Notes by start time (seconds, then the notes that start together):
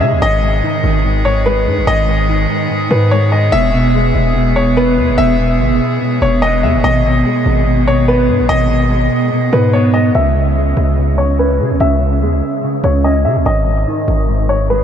Already playing: C#3 G#3 C#4
0.01 C#3 G#3 E5
0.12 C#2
0.22 G#1 G#2 D#3 B3 G#4 D#5
0.43 G#2
0.63 D#3
0.84 G#1
1.05 G#2
1.25 G#2 C#5
1.46 G#3 B4
1.66 G#2 D#3
1.78 G#1
1.87 G#1 G#2 D#5
2.08 G#2
2.29 D#3
2.70 G#2
2.91 G#2 B4
3.11 G#3 C#5
3.32 D#3 D#5
3.52 E1 B2 E3 E5
3.73 B2
3.94 G#3
4.15 E1
4.35 B2
4.56 B2 C#5
4.77 B3 B4
4.97 E2 G#3
5.09 E1
5.18 E1 B2 E5
5.39 B2
5.59 G#1 G#3
5.71 E1
6.01 B2
6.22 E1 B2 C#5
6.42 B3 D#5
6.63 E2 G#3 E5
6.74 E1
6.84 G#1 B2 D#3 G#3 D#5
7.05 B2
7.25 G#3
7.46 G#1
7.66 B2
7.87 B2 C#5
8.08 B3 B4
8.28 G#2 G#3
8.40 G#1
8.49 G#1 B2 D#5
8.70 B2
8.90 G#3
9.32 B2
9.53 G#2 B2 B4
9.73 B3 C#5
9.94 G#3 D#5
10.15 C#2 C#3 E5
10.35 C#3
10.56 G#3
10.77 C#2
10.98 C#3
11.18 C#3 C#5
11.39 C#4 B4
11.60 C#3 G#3
11.71 C#2
11.80 C#2 C#3 E5
12.01 C#3
12.22 E2 G#3
12.33 C#2
12.63 C#3
12.84 C#2 C#3 C#5
13.04 C#4 D#5
13.25 C#3 G#3 E5
13.36 C#2
13.46 G#1 G#2 D#5
13.67 G#2
13.87 D#3
14.08 G#1
14.29 G#2
14.49 G#2 C#5
14.70 G#3 B4